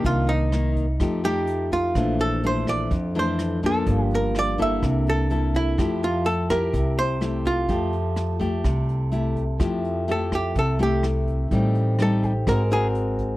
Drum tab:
HH |xxxxxxxx|xxxxxxxx|xxxxxxxx|xxxxx-xx|
SD |--r-r---|r--r--r-|--r-r---|r--r--r-|
BD |o--oo--o|o--oo--o|o--oo--o|o--oo--o|

HH |xxxxxxxx|xxxxxxxx|xxxxxxxx|
SD |--r-r---|r--r--r-|--r-r---|
BD |o--oo--o|o--oo--o|o--oo--o|